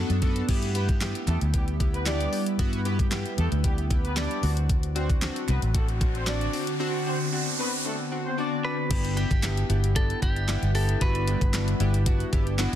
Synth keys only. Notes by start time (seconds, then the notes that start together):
Already playing: B3 D4 F#4 A4
0.22 B3 D4 F#4 A4
0.48 B3 E4 G4
0.75 B3 E4 G4
1.01 B3 E4 G4
1.28 B3 E4 G4
1.54 B3 E4 G4
1.80 B3 E4 G4
2.06 B3 E4 G4
2.33 B3 E4 G4
2.59 B3 E4 F#4
2.85 B3 E4 G4
3.11 B3 E4 G4
3.37 B3 E4 G4
3.64 B3 E4 G4
3.90 B3 E4 G4
4.17 B3 E4 G4
4.43 C4 D4 F#4
4.95 C4 D4 F#4
5.22 C4 D4 F#4
5.48 C4 D4 F#4
5.74 C4 D4 F#4
6.01 C4 D4 F#4
6.27 C4 D4 F#4
6.53 C4 D4 F#4
6.80 C4 D4 F#4
7.06 C4 D4 F#4
7.33 C4 D4 F#4
7.59 C4 D4 F#4
7.85 C4 D4 F#4
8.11 C4 D4 F#4
8.38 C4 D4 F#4
8.64 C4 D4 F#4
8.90 B3 D4 E4 G4
9.17 B3 D4 E4 G4
9.43 B3 D4 E4 G4
9.69 B3 D4 E4 G4
9.96 B3 D4 E4 G4
10.22 B3 D4 E4 G4
10.48 B3 D4 E4 G4
10.75 B3 D4 E4 G4
11.01 B3 D4 E4 F#4
11.28 B3 D4 E4 G4
11.54 B3 D4 E4 F#4
11.80 B3 D4 E4 G4
12.06 B3 D4 E4 F#4
12.33 B3 D4 E4 G4
12.59 B3 D4 E4 F#4